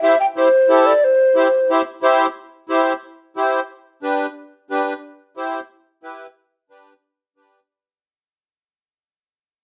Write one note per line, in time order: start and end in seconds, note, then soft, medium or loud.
0.02 0.15 E4 medium
0.02 0.15 G4 medium
0.02 0.15 C5 medium
0.02 0.18 E5 medium
0.20 0.26 G5 medium
0.36 0.48 E4 medium
0.36 0.48 G4 medium
0.36 0.48 C5 medium
0.36 0.88 C5 medium
0.69 0.93 E4 medium
0.69 0.93 G4 medium
0.69 0.93 A4 medium
0.86 1.06 D5 medium
1.04 1.70 C5 medium
1.36 1.48 E4 medium
1.36 1.48 G4 medium
1.36 1.48 C5 medium
1.70 1.81 E4 medium
1.70 1.82 G4 medium
1.70 1.82 C5 medium
2.03 2.26 E4 medium
2.03 2.26 G4 medium
2.03 2.26 C5 loud
2.69 2.93 E4 medium
2.69 2.93 G4 medium
2.69 2.93 C5 medium
3.37 3.60 E4 medium
3.37 3.60 G4 medium
3.37 3.60 C5 medium
4.03 4.26 D4 medium
4.03 4.26 G4 medium
4.03 4.26 B4 medium
4.71 4.93 D4 medium
4.71 4.93 G4 medium
4.71 4.94 B4 loud
5.37 5.60 E4 medium
5.37 5.60 G4 medium
5.37 5.60 C5 medium
6.03 6.26 E4 medium
6.03 6.26 G4 medium
6.03 6.27 B4 loud
6.70 6.93 D4 medium
6.70 6.94 G4 medium
6.70 6.93 B4 medium
7.36 7.60 D4 medium
7.36 7.60 G4 medium
7.36 7.60 B4 medium